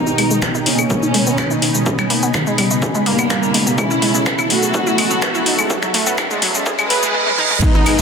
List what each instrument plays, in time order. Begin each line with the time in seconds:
Already playing: analog synth pad B2 D#3 D#4, synth drone B2, analog polysynth B3 D#4, violin section D#4, ambient pad D#4, riser
0.06 synth arpeggio sound D#4, ambient pad G#5, shaker
0.14 synth arpeggio sound G#3, ambient pad B5, open hi-hat, claves
0.31 synth arpeggio sound G#3, shaker
0.42 synth arpeggio sound B4, finger snap, kick, shaker
0.55 synth arpeggio sound D#4, shaker
0.66 analog polysynth A#3 C#4, violin section C#4, synth arpeggio sound D#4, open hi-hat
0.79 synth arpeggio sound G#4, claves, shaker
0.90 synth arpeggio sound G#3, kick, shaker
1.03 synth arpeggio sound D#4, shaker
1.14 synth arpeggio sound G#3, open hi-hat
1.27 synth arpeggio sound B3, shaker
1.38 synth arpeggio sound B4, finger snap, kick, claves, shaker
1.51 synth arpeggio sound D#4, shaker
1.62 synth arpeggio sound D#4, open hi-hat
1.75 synth arpeggio sound G#3, shaker
1.86 analog synth pad C#3, synth arpeggio sound G#4, kick, shaker
1.99 synth arpeggio sound G3, finger snap, claves, shaker
2.10 synth arpeggio sound A#3, open hi-hat
2.23 synth arpeggio sound B3, shaker
2.34 synth arpeggio sound D#3, finger snap, kick, shaker
2.47 synth arpeggio sound G#3, shaker
2.58 synth arpeggio sound G3, open hi-hat, claves
2.71 synth arpeggio sound G#3, shaker
2.82 synth arpeggio sound G#4, kick, shaker
2.95 synth arpeggio sound G#3, shaker
3.06 analog polysynth G3 A#3, synth arpeggio sound A#3, violin section A#3, open hi-hat
3.19 synth arpeggio sound B3, claves, shaker
3.30 synth arpeggio sound A#3, finger snap, kick, shaker
3.43 synth arpeggio sound A#3, shaker
3.54 synth arpeggio sound G#3, open hi-hat
3.67 synth arpeggio sound B3, shaker
3.78 synth arpeggio sound G#3, analog polysynth C#4 E4, violin section E4, analog synth pad A4, kick, claves, shaker
3.91 ambient pad C#4, synth arpeggio sound E4, shaker
4.02 synth arpeggio sound G#3, ambient pad E5, open hi-hat
4.08 ambient pad A4
4.15 synth arpeggio sound G#3, shaker
4.26 synth arpeggio sound B4, finger snap, kick, shaker
4.39 synth arpeggio sound E4, ambient pad A5, claves, shaker
4.50 analog polysynth A3 F#4, synth arpeggio sound D#4, violin section F#4, open hi-hat
4.63 synth arpeggio sound G#4, shaker
4.74 synth arpeggio sound G#3, kick, shaker
4.87 synth arpeggio sound E4, shaker
4.98 synth arpeggio sound G#3, open hi-hat, claves
5.11 synth arpeggio sound B3, shaker
5.22 synth arpeggio sound B4, finger snap, kick, shaker
5.35 synth arpeggio sound E4, shaker
5.46 synth arpeggio sound D#4, open hi-hat
5.59 synth arpeggio sound G#3, claves, shaker
5.70 synth arpeggio sound G#4, kick, shaker
5.83 synth arpeggio sound F#3, finger snap, shaker
5.94 synth arpeggio sound A3, open hi-hat
6.07 synth arpeggio sound B3, shaker
6.18 synth arpeggio sound D#3, finger snap, kick, claves, shaker
6.31 synth arpeggio sound G#3, shaker
6.42 synth arpeggio sound F#3, open hi-hat
6.55 synth arpeggio sound G#3, shaker
6.66 synth arpeggio sound G#4, kick, reverse cymbal, shaker
6.79 synth arpeggio sound G#3, claves, shaker
6.90 synth arpeggio sound F#3, analog polysynth G#4 B4, violin section B4, open hi-hat
7.03 synth arpeggio sound G#3, shaker
7.14 synth arpeggio sound G#3
7.27 synth arpeggio sound G#3, high tom
7.38 synth arpeggio sound D#4, mid tom
7.51 synth arpeggio sound G#3, mid tom
7.62 synth drone B2 D#3, analog synth pad D#3 D#4 D#5, synth arpeggio sound G#3, analog polysynth B3 D#4, violin section D#4, kick, crash, shaker
7.75 detuned saw bass G#1, synth arpeggio sound D#4, shaker
7.86 detuned saw bass G#2, synth arpeggio sound G#3, snare, open hi-hat, claves, shaker
7.98 detuned saw bass G#1, snare, shaker